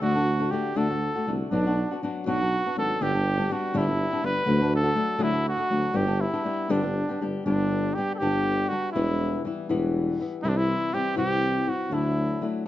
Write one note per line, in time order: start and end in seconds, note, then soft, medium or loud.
0.01 0.50 D2 medium
0.01 0.15 D3 medium
0.01 0.15 A3 medium
0.01 0.14 D4 medium
0.01 0.52 F#4 medium
0.01 0.14 F#4 medium
0.15 0.40 A3 soft
0.15 0.39 D4 soft
0.15 0.38 F#4 medium
0.40 0.52 A3 soft
0.40 0.51 D4 soft
0.40 0.52 F#4 soft
0.51 0.74 D3 medium
0.51 0.75 A3 medium
0.51 0.75 D4 medium
0.51 0.75 F#4 medium
0.51 0.79 G4 medium
0.75 1.09 D2 medium
0.75 0.89 D3 medium
0.75 0.89 A3 medium
0.75 0.89 D4 medium
0.75 0.88 F#4 medium
0.75 1.34 A4 medium
0.89 1.16 A3 soft
0.89 1.15 D4 soft
0.89 1.14 F#4 soft
1.15 1.27 A3 soft
1.15 1.27 D4 soft
1.15 1.27 F#4 soft
1.27 1.43 C2 medium
1.27 1.51 D3 soft
1.27 1.51 A3 soft
1.27 1.52 D4 soft
1.27 1.52 F#4 medium
1.51 1.83 B1 loud
1.51 1.65 B2 medium
1.51 1.65 F#3 medium
1.51 1.65 B3 medium
1.51 1.98 D4 medium
1.51 1.66 D4 medium
1.51 1.65 F#4 medium
1.67 1.91 B3 soft
1.67 1.91 D4 soft
1.67 1.90 F#4 medium
1.91 2.02 B3 soft
1.91 2.02 D4 soft
1.91 2.03 F#4 soft
2.03 2.25 F#3 medium
2.03 2.26 B3 soft
2.03 2.26 D4 medium
2.03 2.27 F#4 medium
2.26 2.59 B1 medium
2.26 2.40 B2 medium
2.26 2.40 F#3 medium
2.26 2.40 B3 medium
2.26 2.40 D4 medium
2.26 2.73 F#4 medium
2.26 2.40 F#4 medium
2.41 2.65 B3 soft
2.41 2.65 D4 soft
2.41 2.65 F#4 soft
2.66 2.76 B3 soft
2.66 2.77 D4 soft
2.66 2.77 F#4 soft
2.77 2.92 G#1 medium
2.77 3.00 F#3 soft
2.77 3.01 B3 soft
2.77 3.01 D4 soft
2.77 3.01 F#4 medium
2.77 3.04 A4 medium
3.00 3.48 G1 loud
3.00 3.14 G2 soft
3.00 3.14 D3 medium
3.00 3.14 G3 medium
3.00 3.13 B3 medium
3.00 3.13 D4 medium
3.00 3.54 G4 loud
3.00 3.12 G4 medium
3.13 3.38 G3 soft
3.13 3.38 B3 soft
3.13 3.37 D4 soft
3.13 3.36 G4 soft
3.38 3.49 G3 soft
3.38 3.50 B3 soft
3.38 3.50 D4 soft
3.38 3.50 G4 soft
3.50 3.73 G3 medium
3.50 3.74 B3 medium
3.50 3.74 D4 medium
3.50 3.79 F#4 medium
3.50 3.75 G4 medium
3.73 4.06 G1 loud
3.73 3.87 G2 medium
3.73 3.87 D3 medium
3.73 3.87 G3 medium
3.73 3.87 B3 medium
3.73 3.87 D4 medium
3.73 3.86 G4 medium
3.78 4.27 E4 loud
3.88 4.13 G3 soft
3.88 4.13 B3 soft
3.88 4.12 D4 soft
4.13 4.22 G3 soft
4.13 4.23 B3 soft
4.13 4.23 D4 medium
4.13 4.23 G4 soft
4.24 4.39 G1 medium
4.24 4.45 G3 medium
4.24 4.47 B3 soft
4.24 4.46 D4 soft
4.24 4.47 G4 medium
4.24 4.74 B4 medium
4.46 4.95 D2 loud
4.46 4.60 D3 medium
4.46 4.60 F#3 medium
4.46 4.60 A3 medium
4.46 4.60 D4 medium
4.46 4.59 F#4 medium
4.60 4.85 A3 soft
4.60 4.83 D4 medium
4.60 4.82 F#4 soft
4.76 5.24 A4 medium
4.83 4.94 A3 soft
4.83 4.96 D4 soft
4.83 4.95 F#4 medium
4.95 5.17 F#3 soft
4.95 5.18 A3 medium
4.95 5.18 D4 medium
4.95 5.19 F#4 medium
5.18 5.54 D2 medium
5.18 5.33 D3 medium
5.18 5.33 F#3 medium
5.18 5.32 A3 medium
5.18 5.32 D4 medium
5.18 5.48 E4 medium
5.18 5.31 F#4 medium
5.32 5.58 A3 soft
5.32 5.57 D4 soft
5.32 5.56 F#4 soft
5.49 5.98 F#4 medium
5.57 5.70 A3 soft
5.57 5.70 D4 soft
5.57 5.70 F#4 medium
5.70 5.87 D2 medium
5.70 5.94 F#3 soft
5.70 5.93 A3 medium
5.70 5.93 D4 soft
5.70 5.94 F#4 soft
5.93 6.27 G1 loud
5.93 6.08 G2 medium
5.93 6.07 D3 medium
5.93 6.07 G3 medium
5.93 6.06 B3 medium
5.93 6.06 D4 medium
5.93 6.05 G4 medium
5.93 6.22 G4 medium
6.06 6.34 G3 soft
6.06 6.33 B3 soft
6.06 6.32 D4 soft
6.06 6.32 G4 medium
6.21 6.72 E4 medium
6.33 6.43 G3 soft
6.33 6.44 B3 soft
6.33 6.44 D4 medium
6.33 6.45 G4 medium
6.44 6.69 G3 soft
6.44 6.69 B3 medium
6.44 6.69 D4 medium
6.44 6.69 G4 medium
6.69 7.04 G1 medium
6.69 6.83 G2 medium
6.69 6.84 D3 medium
6.69 6.83 G3 medium
6.69 6.83 B3 medium
6.69 6.82 D4 medium
6.69 7.28 D4 medium
6.69 6.82 G4 medium
6.83 7.10 G3 soft
6.83 7.09 B3 soft
6.83 7.08 D4 soft
6.83 7.08 G4 soft
7.09 7.20 G3 soft
7.09 7.21 B3 soft
7.09 7.21 D4 soft
7.09 7.21 G4 soft
7.21 7.38 G1 medium
7.21 7.45 G3 soft
7.21 7.45 B3 soft
7.21 7.46 D4 soft
7.21 7.45 G4 soft
7.46 7.95 G1 loud
7.46 7.97 G2 medium
7.46 7.97 D3 medium
7.46 7.97 G3 medium
7.46 7.97 B3 soft
7.46 7.96 D4 medium
7.46 7.97 D4 medium
7.46 7.98 G4 medium
7.94 8.21 G3 soft
7.94 8.20 B3 medium
7.94 8.21 D4 soft
7.94 8.13 G4 medium
7.94 8.21 G4 medium
8.15 8.70 G4 loud
8.15 8.20 A4 soft
8.20 8.69 G1 medium
8.20 8.72 G2 soft
8.20 8.72 D3 soft
8.20 8.72 G3 soft
8.20 8.71 B3 medium
8.20 8.70 D4 medium
8.20 8.71 G4 medium
8.69 8.95 B3 soft
8.69 8.95 D4 soft
8.69 8.91 F#4 medium
8.69 8.95 G4 soft
8.73 8.95 G3 soft
8.92 9.43 E1 loud
8.92 9.45 E2 medium
8.92 9.44 E3 medium
8.92 9.45 E4 medium
8.96 9.46 B2 medium
8.96 9.44 G3 medium
8.96 9.45 B3 medium
8.96 9.46 E4 medium
9.45 9.69 E3 medium
9.45 9.68 G3 soft
9.45 9.69 B3 soft
9.45 9.68 E4 medium
9.69 10.16 E1 medium
9.69 10.20 E2 medium
9.69 10.20 B2 medium
9.69 10.21 E3 medium
9.69 10.20 G3 medium
9.69 10.20 B3 medium
9.69 10.20 E4 medium
10.21 10.44 E3 soft
10.21 10.43 G3 soft
10.21 10.43 B3 soft
10.21 10.43 E4 soft
10.42 10.74 C2 medium
10.42 10.93 C3 medium
10.42 10.93 E3 medium
10.42 10.93 G3 medium
10.42 10.93 C4 medium
10.42 10.50 E4 medium
10.42 10.94 E4 medium
10.49 10.58 D4 medium
10.57 10.95 E4 medium
10.93 11.16 E3 medium
10.93 11.17 G3 medium
10.93 11.16 C4 medium
10.93 11.15 E4 medium
10.93 11.17 G4 medium
11.16 11.64 C2 medium
11.16 11.68 C3 soft
11.16 11.67 E3 soft
11.16 11.67 G3 medium
11.16 11.66 C4 medium
11.16 11.66 E4 medium
11.16 11.70 G4 loud
11.67 11.91 G3 soft
11.67 11.91 C4 soft
11.67 11.91 E4 soft
11.67 11.95 F#4 medium
11.90 12.39 D2 medium
11.90 12.46 D3 soft
11.90 12.40 F#3 soft
11.90 12.42 A3 medium
11.90 12.42 D4 medium
11.90 12.41 E4 medium
11.90 12.49 E4 medium
12.41 12.65 F#3 soft
12.41 12.65 A3 soft
12.41 12.64 D4 medium
12.41 12.65 E4 medium